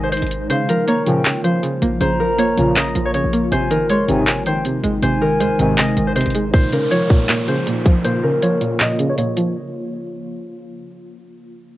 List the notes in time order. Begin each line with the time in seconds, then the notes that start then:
Already playing: G#1 C3 D#3 G#3 D#4 A#4 D#5
0.03 C5
0.12 C5, closed hi-hat
0.17 closed hi-hat
0.22 G#1, closed hi-hat
0.27 closed hi-hat
0.31 closed hi-hat
0.50 C#3 F3 A#3 F4 C5 F5, closed hi-hat
0.69 F3 A#4, closed hi-hat
0.88 A#3 C#5 A#5, closed hi-hat
1.06 A#2 C#3 F3 G5, closed hi-hat
1.25 C#3, clap, closed hi-hat
1.44 F3 C5 F5, closed hi-hat
1.63 C#3, closed hi-hat
1.82 A#1 A#3, closed hi-hat
2.01 A#1 C#3 C5 A#5, closed hi-hat
2.20 F3 A#4
2.38 A#3 C#5, closed hi-hat
2.57 A#1 A#2 C#3 F3, closed hi-hat
2.76 C#3 D#5, clap, closed hi-hat
2.95 A#1 F3, closed hi-hat
3.05 C#5
3.14 C#3 C#5, closed hi-hat
3.24 A#1
3.33 A#3, closed hi-hat
3.52 G#1 C3 D#3 G#3 D#4 C5 G#5, closed hi-hat
3.70 D#3 A#4, closed hi-hat
3.89 G#3 C#5 C6, closed hi-hat
4.08 G#1 G#2 C3 D#3 G#5, closed hi-hat
4.27 C3, clap, closed hi-hat
4.46 D#3 C5 G5, closed hi-hat
4.65 C3, closed hi-hat
4.84 G#1 G#3, closed hi-hat
5.03 G#1 C3 C5 G#5, closed hi-hat
5.22 D#3 A#4
5.40 D#2 G#3 C5, closed hi-hat
5.50 G#1
5.59 G#1 G#2 C3 D#3, closed hi-hat
5.78 C3 D#5, clap, closed hi-hat
5.97 G#1 D#3, closed hi-hat
6.07 C5
6.16 C3 C5, closed hi-hat
6.21 closed hi-hat
6.26 G#1, closed hi-hat
6.30 closed hi-hat
6.35 G#3, closed hi-hat
6.53 A#2 C#3 F3 A#3 F4 C5, kick, closed hi-hat, downlifter
6.72 C#3 A#4, closed hi-hat
6.91 F3 C#5, closed hi-hat
7.10 A#2, kick, closed hi-hat
7.29 A#2, clap, closed hi-hat
7.48 C#3 C5, closed hi-hat
7.67 A#2, closed hi-hat
7.85 F3, kick, closed hi-hat
8.04 A#2 C5, closed hi-hat
8.23 C#3 A#4
8.42 F3 C#5, closed hi-hat
8.61 A#2, closed hi-hat
8.80 A#2 D#5, clap, closed hi-hat
8.99 C#3, closed hi-hat
9.09 C#5
9.18 A#2 C#5, closed hi-hat
9.37 F3, closed hi-hat